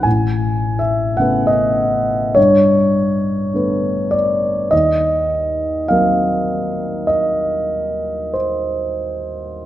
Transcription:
<<
  \new Staff \with { instrumentName = "Grand piano" } { \time 4/4 \key ees \mixolydian \tempo 4 = 51 \tuplet 3/2 { aes''4 e''8 } ges''16 ees''8. des''4. d''8 | ees''4 f''4 ees''4 c''4 | }
  \new Staff \with { instrumentName = "Grand piano" } { \time 4/4 \key ees \mixolydian a,,4 <cis a b b'>4 g,4 <d a b b'>4 | ees,4 <ges bes c' bes'>2. | }
>>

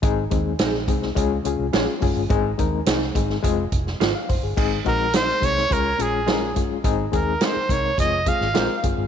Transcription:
<<
  \new Staff \with { instrumentName = "Trumpet" } { \time 4/4 \key aes \mixolydian \tempo 4 = 106 r1 | r1 | r8 bes'8 c''8 des''8 bes'8 aes'4 r8 | r8 bes'8 c''8 des''8 ees''8 f''4 r8 | }
  \new Staff \with { instrumentName = "Clean electric guitar" } { \time 4/4 \key aes \mixolydian r4 <ees' aes' c''>8 r4. <f' aes' des''>8 r8 | r4 <ees' aes' c''>8 r4. <f' aes' c''>8 r8 | r4 <ees' aes' c''>8 r4. <f' aes' des''>8 r8 | r4 <ees' aes' c''>8 r4. <f' aes' c''>8 r8 | }
  \new Staff \with { instrumentName = "Reed electric piano" } { \time 4/4 \key aes \mixolydian << { r1 | r2. r16 f''16 c''16 aes'16~ | aes'16 r2. r8. | r1 | } \\ { <aes c' ees' aes'>8 <aes c' ees' aes'>8 <aes c' ees' aes'>8 <aes c' ees' aes'>8 <aes des' f' aes'>8 <aes des' f' aes'>8 <aes des' f' aes'>8 <aes des' f' aes'>8 | <aes c' ees' aes'>8 <aes c' ees' bes'>8 <aes c' ees' aes'>8 <aes c' ees' aes'>8 <aes c' f' aes'>8 r4. | <aes c' ees' aes'>8 <aes c' ees' ges'>8 <aes c' ees' ges'>8 <aes c' ees' aes'>8 <aes des' f' aes'>8 <aes des' f' aes'>8 <aes des' f' bes'>8 <aes des' f' aes'>8 | <aes c' ees' aes'>8 <aes c' ees' aes'>8 <aes c' ees' bes'>8 <aes c' ees' bes'>8 <aes c' f' aes'>8 <aes c' f' aes'>8 <aes c' f' bes'>8 <aes c' f' aes'>8 | } >> }
  \new Staff \with { instrumentName = "Fingered electric bass" } { \clef bass \time 4/4 \key aes \mixolydian aes,,8 ees,8 bes,,8 c,8 des,8 des,16 c,16 bes,,16 r16 ges,,16 g,,16 | aes,,8 ees,8 c,8 aes,,8 f,,8 f,,8 aes,,16 r16 ges,,16 g,,16 | aes,,8 bes,,4 c,8 des,8 bes,,4 g,,8 | aes,,8 ees,8 r8 c,8 f,,8. aes,,16 bes,,16 r16 ges,,16 g,,16 | }
  \new DrumStaff \with { instrumentName = "Drums" } \drummode { \time 4/4 <hh bd>8 <hh bd>8 <hh sn>16 sn16 <hh bd>16 sn16 <hh bd>8 hh8 <hh sn>8 <hho bd>8 | <hh bd>8 <hh bd>8 <hh sn>16 sn16 <hh bd>16 sn16 <hh bd>8 <hh bd>16 sn16 <hh sn>8 <hho bd>8 | <cymc bd>8 <hh bd>8 <hh sn>16 sn16 <hh bd>16 sn16 <hh bd>8 hh8 <hh sn>8 <hh bd>8 | <hh bd>8 <hh bd>8 <hh sn>8 <hh bd>8 <hh bd>8 <hh bd>16 sn16 <hh sn>8 <hh bd>8 | }
>>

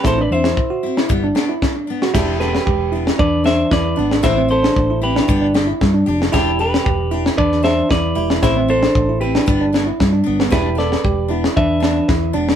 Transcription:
<<
  \new Staff \with { instrumentName = "Clean electric guitar" } { \time 4/4 \key e \minor \tempo 4 = 115 << { c''16 d''16 e''2. r8 | g'8 b'4. d''8 e''8 d''4 | e''8 c''4 b'4 r4. | g'8 b'4. d''8 e''8 d''4 |
e''8 c''4 b'4 r4. | b'8 d''4. e''4. r8 | } \\ { a'16 b'16 c''4. r2 | e'8 g'4. b'8 c''8 b'4 | c''8 a'4 g'4 r4. | e'8 g'4. b'8 c''8 b'4 |
c''8 a'4 g'4 r4. | g'8 b'4. b'4. r8 | } >> }
  \new Staff \with { instrumentName = "Tine electric piano" } { \time 4/4 \key e \minor e'16 d'8 e'8 fis'8 e'8 d'8 e'8 d'8 fis'16 | e'8 a'8 g'8 e'8 d'8 d'8 e'8 d'8 | e'16 c'8 d'8 e'8 d'8 d'8 e'8 d'8 e'16 | e'8 a'8 g'8 e'8 d'8 d'8 e'8 e'8 |
e'16 c'8 d'8 e'8 d'8 d'8 e'8 d'8 b16 | e'8 a'8 g'8 e'8 d'8 d'8 e'8 d'8 | }
  \new Staff \with { instrumentName = "Steel-string acoustic guitar" } { \time 4/4 \key e \minor <e c'>8 <c' e'>8 r8 <c' e'>8 <g b>8 <b d'>8 r8 <b d'>8 | <b d'>8 <b d'>8 r8 <b d'>8 r8 d'8 r8 <b d'>8 | <e c' e'>8 e'8 r8 <c' e'>8 <b d' g'>8 <d' g'>8 r8 <d' g'>8 | <b d' g'>8 <d' g'>8 r8 <d' g'>8 r8 <d' g'>8 r8 g'8 |
<e c'>8 <c' e'>8 r8 <c' e'>8 <g b d'>8 <b d'>8 r8 <b d'>8 | <g b d'>8 <b d'>8 r8 <b d'>8 r8 <b d'>8 r8 <b d'>8 | }
  \new Staff \with { instrumentName = "Fingered electric bass" } { \clef bass \time 4/4 \key e \minor a,,8 e,8 r4 g,,8 r4. | e,,4 e,,4 e,4 e,8 gis,,8 | a,,4 a,,4 g,,4 g,8 f,,8 | e,,4 e,,4 e,4 e,8 e,,8 |
a,,4 a,,4 g,,4 g,8 g,,8 | e,,4 e,,4 e,4 e,8 e,,8 | }
  \new DrumStaff \with { instrumentName = "Drums" } \drummode { \time 4/4 <bd sn>8. sn16 bd8. sn16 bd8 sn8 <bd sn>8. sn16 | <cymc bd sn>8 sn16 sn16 bd8. sn16 bd8 sn8 <bd sn>8. sn16 | <bd sn>8. sn16 bd8. sn16 bd8 sn8 <bd sn>8. sn16 | <bd sn>8. sn16 bd8. sn16 bd16 sn16 sn8 <bd sn>8. sn16 |
<bd sn>8. sn16 bd8. sn16 bd8 sn8 <bd sn>8. sn16 | <bd sn>8 sn16 sn16 bd8. sn16 bd8 sn8 <bd sn>8. sn16 | }
>>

